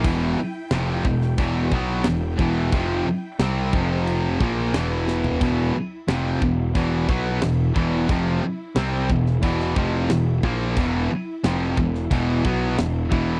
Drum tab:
CC |x---x---x---x---|x---x---x---x---|x---x---x---x---|x---x---x---x---|
SD |----o--o----o---|----o-------o-o-|----o-------o---|----o--o-o--o---|
FT |----------------|---------------o|----------------|----------------|
BD |o-----o-o-o---o-|o-----o---o-----|o-----o-o-o---o-|o-----o-o-o---o-|

CC |x---x---x---x---|
SD |----o--o----o---|
FT |----------------|
BD |o-----o-o-o---o-|